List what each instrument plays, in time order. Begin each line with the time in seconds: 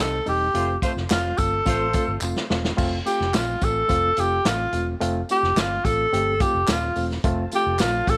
Already playing: reed electric piano G3
0.00 fingered electric bass C2, reed electric piano C4 D#4, tenor saxophone A4
0.26 fingered electric bass E1, reed electric piano G3 C4 D#4, tenor saxophone G4, open hi-hat, tambourine
0.54 fingered electric bass F1, reed electric piano A3 C4 F4, horn section A3 F4 C5, closed hi-hat
0.82 reed electric piano A3 C4 F4, horn section A3 F4 C5, kick, closed hi-hat, tambourine
0.96 fingered electric bass F1, snare
1.10 fingered electric bass F1, reed electric piano A3 C4 F4, tenor saxophone F4, snare, clap, closed hi-hat, tambourine
1.38 fingered electric bass G1, reed electric piano A3 C4 F4, tenor saxophone A4, kick, closed hi-hat, tambourine
1.66 fingered electric bass A1, reed electric piano A3 C4 F4, horn section A3 F4 C5, kick, closed hi-hat, tambourine
1.93 reed electric piano A3 C4 F4, kick, closed hi-hat, tambourine
2.08 fingered electric bass G1
2.21 fingered electric bass F1, reed electric piano A3 C4 F4, clap, tambourine
2.36 snare
2.50 fingered electric bass E1, reed electric piano A3 C4 F4, snare
2.64 snare
2.77 fingered electric bass F1, reed electric piano A3 C4 F4, kick, crash, tambourine
3.06 reed electric piano A3 C4 F4, tenor saxophone G4, closed hi-hat, tambourine
3.20 fingered electric bass F1, snare
3.33 fingered electric bass A#1, reed electric piano A3 C4 F4, tenor saxophone F4, snare, clap, closed hi-hat, tambourine
3.61 fingered electric bass A1, reed electric piano A3 C4 F4, tenor saxophone A4, kick, closed hi-hat, tambourine
3.88 fingered electric bass F1, reed electric piano A3 C4 F4, kick, closed hi-hat, tambourine
4.17 fingered electric bass F1, reed electric piano A3 C4 F4, tenor saxophone G4, closed hi-hat, tambourine
4.45 fingered electric bass A1, reed electric piano A3 C4 F4, tenor saxophone F4, snare, clap, closed hi-hat, tambourine
4.72 fingered electric bass E1, reed electric piano A3 C4 F4, closed hi-hat, tambourine
5.00 fingered electric bass F1, reed electric piano A3 C4 F4, closed hi-hat, tambourine
5.29 reed electric piano A3 C4 F4, tenor saxophone G4, closed hi-hat, tambourine
5.43 fingered electric bass F1, snare
5.56 fingered electric bass G1, reed electric piano A3 C4 F4, tenor saxophone F4, snare, clap, closed hi-hat, tambourine
5.84 fingered electric bass A1, reed electric piano A3 C4 F4, tenor saxophone A4, kick, closed hi-hat, tambourine
6.13 fingered electric bass G1, reed electric piano A3 C4 G4, closed hi-hat, tambourine
6.40 reed electric piano A3 C4 F4, tenor saxophone G4, kick, closed hi-hat, tambourine
6.54 fingered electric bass F1
6.67 fingered electric bass D#1, reed electric piano A3 C4 F4, tenor saxophone F4, snare, clap, closed hi-hat, tambourine
6.95 fingered electric bass E1, reed electric piano A3 C4 F4, open hi-hat, tambourine
7.11 snare
7.24 fingered electric bass F1, tonewheel organ F3 A3 C4 A4, reed electric piano A3 C4 F4, kick, closed hi-hat, tambourine
7.51 reed electric piano A3 C4 F4, tenor saxophone G4, closed hi-hat, tambourine
7.66 fingered electric bass F1
7.79 fingered electric bass A#1, reed electric piano A3 C4 F4, tenor saxophone F4, snare, clap, closed hi-hat, tambourine
8.07 fingered electric bass A1, reed electric piano A3 C4 F4, tenor saxophone A4, kick, closed hi-hat, tambourine